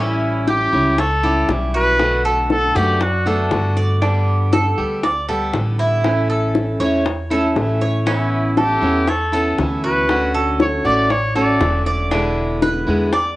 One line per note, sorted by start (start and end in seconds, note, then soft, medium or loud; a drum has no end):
0.00 0.67 A1 medium
0.00 0.72 E3 medium
0.00 0.72 G3 medium
0.00 0.46 C#4 medium
0.00 0.72 C#4 medium
0.00 0.45 E4 medium
0.00 0.71 E4 medium
0.47 0.97 G4 medium
0.47 1.01 G4 loud
0.47 high bongo medium
0.72 1.45 C#2 medium
0.72 0.97 G3 medium
0.72 0.97 C#4 medium
0.72 0.97 E4 medium
0.98 1.49 A4 loud
0.98 1.23 C#5 medium
0.98 muted steel-string acoustic guitar stroke medium
0.98 high bongo medium
1.23 1.48 G3 medium
1.23 1.48 C#4 medium
1.23 1.48 E4 medium
1.23 1.73 G4 medium
1.48 2.69 B1 medium
1.48 1.98 E3 soft
1.48 1.99 G3 soft
1.48 1.99 C#4 medium
1.48 1.99 E4 medium
1.48 high bongo medium
1.48 low bongo medium
1.74 2.24 F#4 medium
1.74 2.22 B4 loud
1.99 2.74 B2 medium
1.99 2.75 D3 medium
1.99 2.76 A3 medium
1.99 2.75 B3 medium
1.99 2.74 F#4 medium
1.99 high bongo medium
2.25 2.74 A4 medium
2.50 2.77 A4 loud
2.50 high bongo medium
2.75 3.48 F#2 loud
2.75 3.00 D3 medium
2.75 3.00 A3 medium
2.75 3.00 B3 medium
2.75 3.00 F#4 medium
2.75 3.03 G4 medium
2.75 3.25 D5 medium
2.75 high bongo soft
3.01 3.29 F#4 medium
3.01 muted steel-string acoustic guitar stroke medium
3.01 high bongo medium
3.26 3.50 D3 medium
3.26 3.51 A3 medium
3.26 3.51 B3 medium
3.26 3.77 D4 medium
3.26 3.50 F#4 medium
3.26 3.76 A4 medium
3.26 high bongo soft
3.51 4.72 G2 loud
3.51 4.00 D3 soft
3.51 4.01 A3 medium
3.51 4.02 B3 soft
3.51 4.02 F#4 medium
3.51 high bongo medium
3.51 low bongo medium
3.77 4.01 D5 medium
3.77 high bongo soft
4.01 4.77 D3 medium
4.01 4.77 G3 medium
4.01 4.77 B3 medium
4.01 4.51 D4 medium
4.01 4.76 G4 medium
4.01 high bongo medium
4.53 5.02 A4 medium
4.53 high bongo medium
4.78 5.50 D2 medium
4.78 5.02 G3 medium
4.78 5.02 B3 medium
4.78 5.02 G4 medium
5.03 5.28 D5 medium
5.03 muted steel-string acoustic guitar stroke medium
5.03 high bongo medium
5.28 5.53 G3 medium
5.28 5.53 B3 medium
5.28 5.53 G4 medium
5.28 5.78 A4 medium
5.53 6.74 A1 medium
5.53 6.03 D3 medium
5.53 6.04 G3 soft
5.53 6.04 B3 medium
5.53 6.04 G4 medium
5.53 high bongo medium
5.53 low bongo medium
5.79 6.28 E4 medium
6.04 7.05 E3 medium
6.04 6.81 A3 medium
6.04 6.81 C#4 medium
6.04 6.80 E4 medium
6.04 high bongo medium
6.30 6.79 A4 medium
6.55 high bongo medium
6.80 7.52 E2 medium
6.80 7.05 A3 medium
6.80 7.05 C#4 medium
6.80 7.05 E4 medium
6.80 7.29 C#5 medium
6.80 high bongo soft
7.05 muted steel-string acoustic guitar stroke medium
7.05 high bongo medium
7.30 7.55 A3 medium
7.30 7.56 C#4 medium
7.30 7.55 E4 medium
7.30 7.80 A4 medium
7.30 high bongo soft
7.55 8.76 A1 medium
7.55 8.05 E3 soft
7.55 8.06 A3 soft
7.55 8.06 C#4 soft
7.55 8.06 E4 medium
7.55 high bongo medium
7.55 low bongo medium
7.81 8.06 C#5 medium
7.81 high bongo soft
8.06 8.81 E3 medium
8.06 8.82 B3 medium
8.06 8.56 C#4 medium
8.06 8.82 C#4 medium
8.06 8.60 E4 medium
8.06 8.80 E4 medium
8.06 high bongo medium
8.57 9.10 G4 loud
8.57 9.06 A4 medium
8.57 high bongo medium
8.81 9.54 E2 medium
8.81 9.07 B3 medium
8.81 9.07 C#4 medium
8.81 9.06 E4 medium
9.07 9.59 A4 medium
9.07 9.32 C#5 medium
9.07 muted steel-string acoustic guitar stroke medium
9.07 high bongo medium
9.32 9.57 B3 medium
9.32 9.58 C#4 medium
9.32 9.57 E4 medium
9.32 9.82 A4 medium
9.58 10.78 D2 medium
9.58 10.08 E3 medium
9.58 10.08 B3 medium
9.58 10.08 C#4 medium
9.58 10.09 E4 medium
9.58 high bongo medium
9.58 low bongo medium
9.84 10.33 F#4 medium
9.84 10.31 B4 loud
10.08 10.84 D3 medium
10.08 10.84 A3 medium
10.08 10.84 C#4 medium
10.08 10.83 F#4 medium
10.08 high bongo medium
10.34 10.83 A4 medium
10.60 10.88 C#5 loud
10.60 high bongo medium
10.84 11.57 A1 medium
10.84 11.09 A3 medium
10.84 11.10 C#4 medium
10.84 11.09 F#4 medium
10.84 11.34 D5 medium
10.84 11.12 D5 loud
10.84 high bongo soft
11.10 11.36 C#5 loud
11.10 muted steel-string acoustic guitar stroke medium
11.10 high bongo medium
11.35 11.60 A3 medium
11.35 11.60 C#4 medium
11.35 11.60 F#4 medium
11.35 11.85 A4 medium
11.35 11.83 D5 medium
11.35 high bongo soft
11.61 12.81 E1 medium
11.61 12.10 D3 medium
11.61 12.11 A3 medium
11.61 12.11 C#4 medium
11.61 12.11 F#4 medium
11.61 high bongo medium
11.61 low bongo medium
11.86 12.11 D5 medium
11.86 high bongo soft
12.11 12.86 B2 medium
12.11 12.87 D3 medium
12.11 12.87 G#3 medium
12.11 12.86 B3 medium
12.11 12.60 D4 medium
12.11 12.86 E4 medium
12.11 high bongo medium
12.62 13.11 B4 medium
12.62 high bongo medium
12.87 13.36 E2 medium
12.87 13.12 D3 medium
12.87 13.12 G#3 medium
12.87 13.12 B3 medium
12.87 13.11 E4 medium
13.12 13.36 D5 medium
13.12 muted steel-string acoustic guitar stroke medium
13.12 high bongo medium